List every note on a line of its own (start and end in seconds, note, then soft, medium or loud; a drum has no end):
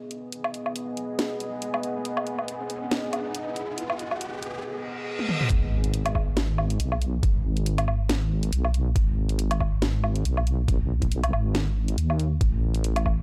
0.00 5.46 B3 medium
0.00 5.46 G#4 medium
0.00 5.46 D#5 medium
0.00 riser medium
0.11 closed hi-hat medium
0.32 closed hi-hat medium
0.44 low woodblock medium
0.54 closed hi-hat medium
0.66 low woodblock medium
0.76 closed hi-hat medium
0.97 closed hi-hat medium
1.19 snare loud
1.19 closed hi-hat medium
1.40 closed hi-hat medium
1.62 closed hi-hat medium
1.74 low woodblock medium
1.83 closed hi-hat medium
2.05 closed hi-hat medium
2.17 low woodblock medium
2.27 closed hi-hat medium
2.39 low woodblock soft
2.48 closed hi-hat medium
2.70 closed hi-hat medium
2.91 snare loud
2.91 closed hi-hat medium
3.13 closed hi-hat medium
3.13 low woodblock medium
3.35 closed hi-hat medium
3.56 closed hi-hat medium
3.78 closed hi-hat medium
3.90 low woodblock medium
3.99 closed hi-hat soft
4.11 low woodblock medium
4.21 closed hi-hat medium
4.43 closed hi-hat medium
4.64 reverse cymbal medium
5.19 high tom medium
5.29 mid tom medium
5.41 mid tom medium
5.50 6.78 G#1 loud
5.50 kick loud
5.50 closed hi-hat medium
5.50 impact medium
5.84 closed hi-hat medium
5.94 closed hi-hat medium
6.06 closed hi-hat medium
6.06 low woodblock medium
6.15 kick medium
6.15 low woodblock medium
6.37 snare loud
6.37 closed hi-hat medium
6.58 low woodblock medium
6.70 closed hi-hat medium
6.80 7.21 B1 loud
6.80 closed hi-hat medium
6.92 low woodblock medium
7.02 closed hi-hat medium
7.23 8.51 G#1 loud
7.23 kick loud
7.23 closed hi-hat medium
7.57 closed hi-hat medium
7.66 closed hi-hat medium
7.78 closed hi-hat medium
7.78 low woodblock medium
7.88 low woodblock medium
8.09 snare loud
8.09 closed hi-hat medium
8.43 closed hi-hat medium
8.52 8.94 B1 loud
8.52 closed hi-hat medium
8.65 low woodblock medium
8.74 closed hi-hat medium
8.96 10.24 G#1 loud
8.96 kick loud
8.96 closed hi-hat medium
9.29 closed hi-hat medium
9.39 closed hi-hat medium
9.51 closed hi-hat medium
9.51 low woodblock medium
9.60 kick medium
9.60 low woodblock medium
9.82 snare loud
9.82 closed hi-hat medium
10.04 low woodblock medium
10.16 closed hi-hat medium
10.25 10.67 B1 loud
10.25 closed hi-hat medium
10.37 low woodblock medium
10.47 closed hi-hat medium
10.68 11.32 B1 loud
10.68 kick loud
10.68 closed hi-hat medium
11.02 kick medium
11.02 closed hi-hat medium
11.12 closed hi-hat medium
11.24 closed hi-hat medium
11.24 low woodblock medium
11.33 11.96 G#1 loud
11.33 low woodblock medium
11.55 snare loud
11.55 closed hi-hat medium
11.88 closed hi-hat medium
11.98 12.39 D#2 loud
11.98 closed hi-hat medium
12.10 low woodblock medium
12.20 closed hi-hat medium
12.41 13.22 A1 loud
12.41 kick loud
12.41 closed hi-hat medium
12.75 closed hi-hat soft
12.84 closed hi-hat medium
12.96 closed hi-hat medium
12.96 low woodblock medium
13.06 kick medium
13.06 low woodblock medium